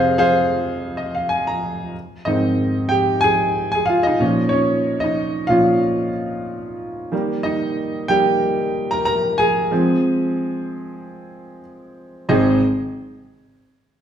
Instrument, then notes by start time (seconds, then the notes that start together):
grand piano
Already playing: F2 C3 G#4 C5 D#5 F5
0.18 G#4 C5 F5
0.97 D#5
1.15 F5
1.29 G#5
1.47 A#5
2.25 G#2 D#3 C4 D#4 D#5
2.89 G4 G5
3.21 G#4 G#5
3.72 G#4 G#5
3.86 F4 F5
4.03 D#4 D#5
4.20 A#2 F3 C#4
4.49 C#4 C#5
5.00 D#4 D#5
5.47 A#2 F3 C#4 F4 F5
7.12 D#3 G3 A#3
7.43 D#4 D#5
8.08 D#3 G3 A#3 G4 G5
8.91 A#4 A#5
9.05 A#4 A#5
9.38 G#4 G#5
9.71 F3 G#3 C4
12.29 G#1 C4 D#4 G#4 D#5